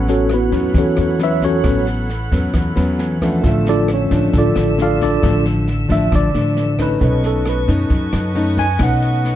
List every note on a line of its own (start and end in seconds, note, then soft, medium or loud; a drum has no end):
0.00 0.49 A1 loud
0.00 0.73 A2 medium
0.00 0.27 F#3 medium
0.00 0.27 B3 medium
0.00 0.27 C#4 medium
0.00 3.15 C#4 medium
0.00 3.16 A4 medium
0.00 6.97 A4 medium
0.00 3.17 B4 medium
0.00 3.40 C#5 medium
0.00 3.18 F#5 medium
0.00 3.40 F#5 medium
0.00 3.40 B5 medium
0.08 0.31 C#4 medium
0.08 0.31 F#4 medium
0.08 0.31 A4 medium
0.08 0.30 C#5 medium
0.08 snare soft
0.29 0.74 E4 soft
0.29 cross-stick medium
0.29 snare soft
0.34 0.74 B3 medium
0.34 0.74 F#4 medium
0.34 0.74 B4 medium
0.52 0.73 E2 medium
0.52 1.16 F#3 medium
0.52 1.16 B3 medium
0.52 1.16 C#4 medium
0.52 kick soft
0.52 snare soft
0.74 0.95 E2 medium
0.74 1.62 E3 medium
0.74 kick medium
0.74 snare soft
0.78 1.19 C#4 medium
0.78 1.19 F#4 medium
0.78 1.19 A4 medium
0.78 1.18 C#5 medium
0.97 1.61 E2 medium
0.97 cross-stick medium
0.97 snare soft
1.19 1.61 F#3 soft
1.19 1.61 B3 medium
1.19 1.61 C#4 medium
1.19 snare soft
1.23 1.44 E4 medium
1.23 1.44 B4 medium
1.23 1.43 C#5 medium
1.23 1.43 E5 medium
1.42 1.85 C#4 medium
1.42 1.85 F#4 medium
1.42 1.85 A4 medium
1.42 1.85 C#5 medium
1.42 kick soft
1.42 snare soft
1.64 2.28 A1 medium
1.64 2.52 A2 medium
1.64 2.09 F#3 medium
1.64 2.09 B3 medium
1.64 2.09 C#4 medium
1.64 kick medium
1.64 cross-stick medium
1.64 snare soft
1.87 snare soft
2.09 snare soft
2.31 2.52 E2 medium
2.31 2.73 F#3 medium
2.31 2.73 B3 medium
2.31 2.73 C#4 medium
2.31 kick soft
2.31 snare soft
2.54 2.75 E2 medium
2.54 3.41 E3 medium
2.54 kick medium
2.54 cross-stick medium
2.54 snare soft
2.76 3.40 E2 medium
2.76 3.17 F#3 medium
2.76 3.17 B3 medium
2.76 3.18 C#4 medium
2.76 2.97 B5 soft
2.76 snare soft
2.99 3.20 G#5 soft
2.99 snare soft
3.21 4.07 F3 medium
3.21 4.08 A3 medium
3.21 3.43 C#4 soft
3.21 4.08 D4 medium
3.21 3.44 A4 soft
3.21 3.44 B4 soft
3.21 3.43 E5 soft
3.21 3.45 F#5 soft
3.21 kick soft
3.21 cross-stick medium
3.21 snare soft
3.41 4.07 A1 medium
3.41 4.31 D3 medium
3.41 6.96 A3 medium
3.41 6.97 F4 medium
3.41 6.99 E6 medium
3.41 kick medium
3.41 snare soft
3.46 6.98 A4 medium
3.46 6.99 E5 medium
3.66 3.89 D4 medium
3.66 3.89 F4 medium
3.66 3.89 A4 medium
3.66 3.89 D5 medium
3.66 snare soft
3.88 cross-stick medium
3.88 snare soft
3.94 4.33 C#4 medium
3.94 4.33 C#5 medium
4.11 4.32 A1 medium
4.11 4.75 F3 medium
4.11 4.75 A3 medium
4.11 4.75 D4 medium
4.11 kick soft
4.11 snare soft
4.33 4.54 A1 medium
4.33 5.20 D3 medium
4.33 kick medium
4.33 snare soft
4.38 4.77 D4 medium
4.38 4.77 F4 medium
4.38 4.77 A4 medium
4.38 4.77 D5 medium
4.56 5.19 A1 medium
4.56 cross-stick medium
4.56 snare soft
4.78 5.19 F3 soft
4.78 5.19 A3 medium
4.78 5.19 D4 medium
4.78 snare soft
4.82 5.02 F4 medium
4.82 5.02 A4 medium
4.82 5.01 D5 medium
4.82 5.02 F5 medium
5.01 5.43 D4 medium
5.01 5.43 F4 medium
5.01 5.44 A4 medium
5.01 5.43 D5 medium
5.01 kick soft
5.01 snare soft
5.22 5.86 A1 loud
5.22 6.10 D3 medium
5.22 5.67 F3 medium
5.22 5.67 A3 medium
5.22 5.67 D4 medium
5.22 kick medium
5.22 cross-stick medium
5.22 snare soft
5.46 snare soft
5.68 snare soft
5.89 6.11 A1 medium
5.89 6.30 F3 medium
5.89 6.31 A3 medium
5.89 6.31 D4 medium
5.89 6.12 E5 medium
5.89 kick soft
5.89 snare soft
6.11 6.33 A1 medium
6.11 6.99 D3 medium
6.11 kick medium
6.11 cross-stick medium
6.11 snare soft
6.15 6.77 D5 medium
6.34 6.97 A1 medium
6.34 6.75 F3 medium
6.34 6.75 A3 medium
6.34 6.76 D4 medium
6.34 snare soft
6.57 snare soft
6.78 7.65 A3 medium
6.78 7.65 C#4 medium
6.78 7.65 D#4 medium
6.78 7.22 B4 medium
6.78 kick soft
6.78 cross-stick medium
6.78 snare soft
6.98 7.64 B1 medium
6.98 7.88 B2 medium
6.98 9.36 C#4 medium
6.98 9.36 A4 soft
6.98 9.36 B4 medium
6.98 9.36 A5 medium
6.98 9.36 C#6 medium
6.98 kick medium
6.98 snare soft
7.02 9.36 B4 soft
7.02 9.36 D#5 medium
7.24 7.47 A4 medium
7.24 snare soft
7.46 7.69 B4 medium
7.46 cross-stick medium
7.46 snare soft
7.68 7.89 F#2 medium
7.68 8.31 A3 medium
7.68 8.32 C#4 medium
7.68 8.32 D#4 medium
7.68 kick soft
7.68 snare soft
7.90 8.11 F#2 medium
7.90 8.78 F#3 medium
7.90 kick medium
7.90 snare soft
8.13 8.76 F#2 medium
8.13 cross-stick medium
8.13 snare soft
8.35 8.64 A3 medium
8.35 8.64 C#4 medium
8.35 8.65 D#4 medium
8.35 snare soft
8.57 8.80 G#5 medium
8.57 kick soft
8.57 snare soft
8.79 9.36 B1 medium
8.79 9.36 B2 medium
8.79 9.36 A3 medium
8.79 9.36 C#4 medium
8.79 9.36 D#4 medium
8.79 9.36 F#5 medium
8.79 kick medium
8.79 cross-stick medium
8.79 snare soft
9.02 snare soft
9.25 snare soft